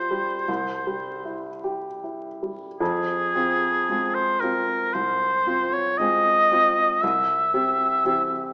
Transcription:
Already playing: C2 G3 F4 G4 C5
0.11 G3
0.48 C2
0.87 G3
1.25 E4
1.64 G4
2.04 E4
2.43 G3
2.80 F2 G#4
3.35 C4 F4
3.89 G#3 C4 F4
4.15 C5
4.40 C4 F4 A#4
4.94 C2 C5
5.46 C4 F4
5.73 C#5
5.98 G#3 C4 F4 D#5
6.52 C4 F4
7.02 C2 E5
7.54 C4 G4
8.05 E3 C4 G4

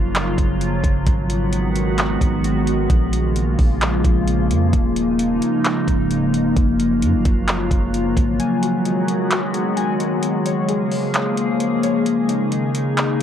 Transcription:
Already playing: F#1 C#3 F3 F#3 A#3 F4
0.15 clap, closed hi-hat
0.38 F#1, kick, closed hi-hat
0.61 closed hi-hat
0.84 F#1, kick, closed hi-hat
1.07 G#1 D#3 G#3 B3 F#4, kick, closed hi-hat
1.30 closed hi-hat
1.53 closed hi-hat
1.76 closed hi-hat
1.98 clap, closed hi-hat
2.21 G#1, kick, closed hi-hat
2.44 closed hi-hat
2.67 closed hi-hat
2.90 A#1 C#3 F3 A#3 F4, kick, closed hi-hat
3.13 closed hi-hat
3.36 closed hi-hat
3.59 A#1, kick, open hi-hat
3.81 clap, closed hi-hat
4.04 A#1, kick, closed hi-hat
4.28 closed hi-hat
4.50 F2, closed hi-hat
4.73 D#1 D#4, kick, closed hi-hat
4.96 closed hi-hat
5.19 closed hi-hat
5.42 closed hi-hat
5.65 clap, closed hi-hat
5.88 C#1, kick, closed hi-hat
6.11 closed hi-hat
6.34 closed hi-hat
6.57 F#1 F#3 F4, kick, closed hi-hat
6.80 closed hi-hat
7.02 F#2, closed hi-hat
7.14 F#1
7.25 F#1, kick, closed hi-hat
7.48 clap, closed hi-hat
7.71 F#1, kick, closed hi-hat
7.94 closed hi-hat
8.17 G#1, kick, closed hi-hat
8.39 D#3 F#3 G#3 B3 F#4 G#5, closed hi-hat
8.62 F#4, closed hi-hat
8.85 G#3, closed hi-hat
9.08 closed hi-hat
9.31 F#4, clap, closed hi-hat
9.54 G#3, closed hi-hat
9.76 G#5, closed hi-hat
10.00 F#4, closed hi-hat
10.23 C#3 F3 A#3 G#4, closed hi-hat
10.46 C#5, closed hi-hat
10.69 G#4, closed hi-hat
10.92 open hi-hat
11.14 clap, closed hi-hat
11.37 closed hi-hat
11.60 A#3, closed hi-hat
11.83 C#5, closed hi-hat
12.05 D#4 G#4, closed hi-hat
12.28 D#4, closed hi-hat
12.52 D#3, closed hi-hat
12.75 closed hi-hat
12.97 D#4, clap, closed hi-hat

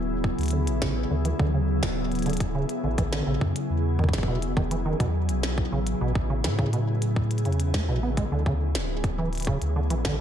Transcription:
Already playing: D1 C#3 F#3 B3 E4 G#4
0.24 kick
0.38 D2, closed hi-hat
0.41 closed hi-hat
0.43 closed hi-hat
0.46 closed hi-hat
0.48 closed hi-hat
0.51 D3, closed hi-hat
0.67 A1, closed hi-hat
0.82 C#3, kick, snare
1.11 D2 D3
1.25 E3, closed hi-hat
1.39 D2 D3, kick
1.54 C#3
1.83 D1, kick, snare, closed hi-hat
2.12 closed hi-hat
2.15 closed hi-hat
2.19 closed hi-hat
2.22 closed hi-hat
2.26 D3, closed hi-hat
2.30 closed hi-hat
2.33 closed hi-hat
2.37 closed hi-hat
2.40 kick, closed hi-hat
2.55 C#3
2.69 closed hi-hat
2.84 A1 D3
2.98 E3, kick, closed hi-hat
3.13 D3, snare
3.27 A1 C#3
3.41 F#2, kick
3.56 closed hi-hat
3.70 E2
3.99 D#3, kick
4.04 kick
4.09 kick
4.13 E1, kick, snare, closed hi-hat
4.18 kick
4.23 kick
4.28 B2
4.42 closed hi-hat
4.57 D#3, kick
4.71 E3, closed hi-hat
4.86 D#3
5.00 E2 B2, kick, closed hi-hat
5.29 B1, closed hi-hat
5.43 snare
5.58 kick
5.72 A1 C#3
5.87 closed hi-hat
6.01 A1 B2
6.15 kick
6.30 C#3
6.44 A2 E3, snare, closed hi-hat
6.59 C#3, kick
6.73 B2, closed hi-hat
7.02 closed hi-hat
7.16 kick
7.31 closed hi-hat
7.38 closed hi-hat
7.45 E2 C#3, closed hi-hat
7.53 closed hi-hat
7.60 closed hi-hat
7.74 A3, kick, snare
7.88 A1 B2
8.03 B3
8.17 G#3, kick, closed hi-hat
8.32 D2 D3
8.46 C#3, kick
8.75 D1, snare, closed hi-hat
9.04 kick, closed hi-hat
9.18 E3
9.33 closed hi-hat
9.35 closed hi-hat
9.38 closed hi-hat
9.40 closed hi-hat
9.42 closed hi-hat
9.45 C#3, kick, closed hi-hat
9.62 D2, closed hi-hat
9.76 D3
9.90 A1 E3, closed hi-hat
10.05 D3, kick, snare

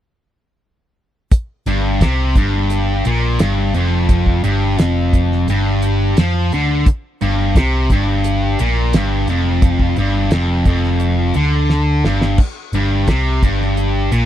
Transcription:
1.31 kick, closed hi-hat
1.66 G1 G2, closed hi-hat
2.01 C2 C3, kick, snare, closed hi-hat
2.35 G1 G2, kick, closed hi-hat
2.70 closed hi-hat
3.05 A#1 A#2, closed hi-hat
3.39 G1 G2, snare, closed hi-hat
3.74 F1 F2, closed hi-hat
4.09 kick, closed hi-hat
4.26 kick
4.44 G1 G2, closed hi-hat
4.78 F1 F2, snare, closed hi-hat
5.13 kick, closed hi-hat
5.32 snare
5.48 G1 G2, closed hi-hat
5.82 closed hi-hat
6.17 F2 F3, snare, closed hi-hat
6.52 D2 D3, closed hi-hat
6.86 kick, closed hi-hat
7.21 G1 G2, closed hi-hat
7.55 C2 C3, kick, snare, closed hi-hat
7.90 G1 G2, kick, closed hi-hat
8.24 closed hi-hat
8.59 A#1 A#2, closed hi-hat
8.93 G1 G2, snare, closed hi-hat
9.27 F1 F2, closed hi-hat
9.62 kick, closed hi-hat
9.79 kick
9.96 G1 G2, closed hi-hat
10.31 F1 F2, snare, closed hi-hat
10.65 F1 F2, kick, closed hi-hat
10.84 snare
11.00 closed hi-hat
11.34 D2 D3, closed hi-hat
11.70 snare
12.04 G1 G2, snare
12.21 snare
12.38 kick, splash, crash
12.73 G1 G2, closed hi-hat
13.07 C2 C3, kick, snare, closed hi-hat
13.43 G1 G2, kick, closed hi-hat
13.61 snare
13.77 closed hi-hat
14.11 A#1 A#2, closed hi-hat

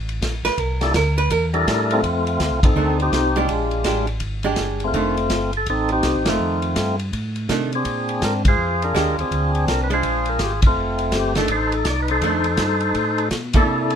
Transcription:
Already playing: A1
0.09 ride
0.21 A#1, kick, snare, hi-hat pedal, ride
0.43 A#1 B4, snare, ride
0.57 C2 A#4, kick, ride
0.81 G3 A#3 D4 E4 A4, snare, ride
0.94 D2 A#4, kick, snare, hi-hat pedal, ride
1.18 B4, ride
1.30 E2 A#4, kick, ride
1.54 G3 D4 E4 A4 A#4, ride
1.67 A2, kick, snare, hi-hat pedal, ride
1.91 A3 C4 F4, ride
2.03 F2, kick, ride
2.27 ride
2.40 D#2, kick, snare, hi-hat pedal, ride
2.51 C2
2.63 A1 C4 D#4 A4, kick, ride
2.74 D2 D#3 A3 D4
3.00 C4 D#4 G4, ride
3.12 C2, kick, snare, hi-hat pedal, ride
3.36 G#3 D4 F4 G4, ride
3.48 A#1, kick, ride
3.71 ride
3.84 A1 G#3 D4 G4, kick, snare, hi-hat pedal, ride
4.07 ride
4.20 G#1, kick, ride
4.43 G#3 D4 G4, ride
4.56 G1, kick, snare, hi-hat pedal, ride
4.80 ride
4.84 A3 C4 F4
4.93 F1 D#3 A3 D4, kick, ride
5.17 ride
5.30 G1, kick, snare, hi-hat pedal, ride
5.53 ride
5.57 A4
5.66 A1 C4 D#4, kick, ride
5.70 A4
5.89 C4 D#4 G4, ride
6.03 C2, kick, snare, hi-hat pedal, ride
6.16 A1
6.26 F1 D#3 A3 C4 F4, snare, ride
6.40 F2
6.62 ride
6.76 G2, kick, snare, hi-hat pedal, ride
6.99 ride
7.13 A2, kick, ride
7.36 ride
7.49 C3 D#3 A3 D4, kick, snare, hi-hat pedal, ride
7.72 C4 D4 G#4, ride
7.85 A#2, kick, ride
8.09 ride
8.21 G#2 A#4, kick, snare, hi-hat pedal, ride
8.45 G#4 C5, kick, ride
8.49 F4
8.58 F2
8.82 D4 F4 A#4, ride
8.95 D#2 G#3 D4 G4, kick, snare, hi-hat pedal, ride
9.17 D#2 C4 D4 G#4, ride
9.31 D2, kick, ride
9.55 ride
9.67 C2 A#4, kick, snare, hi-hat pedal, ride
9.84 B4
9.90 G#3 D4 F4 G#4 C5, ride
10.03 A#1, kick, ride
10.26 A#4, ride
10.39 G#1 G4, kick, snare, hi-hat pedal, ride
10.62 kick, ride
10.67 A3 C4 F4
10.76 F1
10.99 ride
11.12 G1, kick, snare, hi-hat pedal, ride
11.17 G4
11.35 D#3 A3 D4 A4, snare, ride
11.48 A1 D#4 A4 C5, kick, ride
11.72 A4, ride
11.85 C2 D5, kick, snare, hi-hat pedal, ride
12.02 B4
12.08 D#4 A4 C5, ride
12.21 F2 D#3 A3 D4, kick, ride
12.44 ride
12.57 G2, kick, snare, hi-hat pedal, ride
12.80 ride
12.94 A2, kick, ride
13.18 ride
13.31 B2, kick, snare, hi-hat pedal, ride
13.53 A#3 D4 E4 A4, kick, ride
13.66 C3
13.90 ride

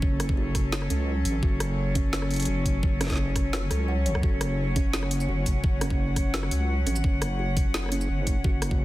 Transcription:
Already playing: F#3 C#4 A4 C#5
0.02 F#1, kick
0.20 cross-stick, closed hi-hat
0.29 kick
0.37 F#4
0.55 kick, cross-stick, closed hi-hat
0.72 snare
0.82 cross-stick
0.90 C#2 C#4, closed hi-hat
1.25 A1, closed hi-hat
1.43 F#1 F#4, kick
1.60 cross-stick, closed hi-hat
1.95 C#4, kick, closed hi-hat
2.13 snare
2.22 cross-stick
2.31 closed hi-hat
2.34 closed hi-hat
2.36 closed hi-hat
2.40 closed hi-hat
2.42 closed hi-hat
2.45 F#1 F#4, closed hi-hat
2.65 kick, closed hi-hat
2.83 F#1, kick
3.01 C#4, cross-stick, snare, closed hi-hat
3.04 snare
3.07 kick, snare
3.10 snare, closed hi-hat
3.12 snare
3.16 snare
3.36 kick, cross-stick, closed hi-hat
3.53 F#4, snare
3.71 C#2 A4, cross-stick, closed hi-hat
3.88 F#5
4.06 G#1 C#5, closed hi-hat
4.15 C#2, cross-stick
4.23 F#1 F#4, kick
4.41 cross-stick, closed hi-hat
4.75 C#4 F#5, kick, closed hi-hat
4.93 snare
5.03 cross-stick
5.11 closed hi-hat
5.20 shaker
5.29 F#1 F#4
5.46 kick, closed hi-hat, shaker
5.64 F#1, kick
5.81 C#4, cross-stick, closed hi-hat
5.90 kick
6.16 kick, cross-stick, closed hi-hat
6.34 F#4, snare
6.43 cross-stick
6.51 C#2, closed hi-hat
6.86 A1 C#4, closed hi-hat, shaker
6.96 shaker
7.04 F#1, kick
7.22 cross-stick, closed hi-hat
7.39 F#4
7.57 kick, closed hi-hat
7.74 snare
7.83 cross-stick
7.86 cross-stick
7.89 C#4, cross-stick, closed hi-hat
8.01 shaker
8.09 F#1
8.27 kick, closed hi-hat, shaker
8.44 F#1 F#4, kick
8.62 cross-stick, closed hi-hat
8.71 kick

